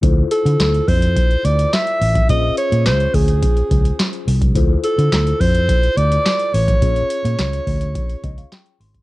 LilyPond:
<<
  \new Staff \with { instrumentName = "Alto saxophone" } { \time 4/4 \key bes \lydian \tempo 4 = 106 r8 a'4 c''4 d''8 e''4 | ees''8 des''8 c''8 aes'4. r4 | r8 a'4 c''4 d''4 cis''8~ | cis''2. r4 | }
  \new Staff \with { instrumentName = "Tine electric piano" } { \time 4/4 \key bes \lydian << { r1 | r1 | r1 | r2 r8 ees''16 f''16 g''8 c'''8 | } \\ { <e' f' a' c''>1 | <des' f' aes' c''>1 | <e' f' a' c''>1 | <des' f' aes' des''>1 | } >> }
  \new Staff \with { instrumentName = "Fingered electric bass" } { \clef bass \time 4/4 \key bes \lydian d,8 r16 d16 d,8 f,8. r16 d,8 r8 a,,8 | bes,,8 r16 bes,16 des,8 d,8. r16 des,8 r8 c,8 | d,8 r16 d16 d,8 f,8. r16 d,8 r8 a,,8 | bes,,8 r16 bes,16 des,8 d,8. r16 des,8 r8 aes,,8 | }
  \new DrumStaff \with { instrumentName = "Drums" } \drummode { \time 4/4 <hh bd>8 hh16 hh16 <hc hh sn>16 hh16 <hho bd>16 hh16 <hh bd>16 hh16 hh16 hh16 <hc hh sn>16 hh16 hho16 <hh bd>16 | <hh bd>8 hh16 hh16 <hc hh sn>16 hh16 <hho bd>16 hh16 <hh bd>16 hh16 <hh bd>16 hh16 <hc hh sn>16 hh16 hho16 <hh bd>16 | <hh bd>8 hh16 hh16 <hc hh sn>16 hh16 <hho bd>16 hh16 <hh bd>16 hh16 hh16 hh16 <hc hh sn>16 hh16 hho16 <hh bd>16 | <hh bd>16 hh16 hh16 hh16 <hc hh sn>16 hh16 <hho bd>16 hh16 <hh bd>16 hh16 <hh bd>16 hh16 <hc hh sn>16 hh16 hho16 <hh bd>16 | }
>>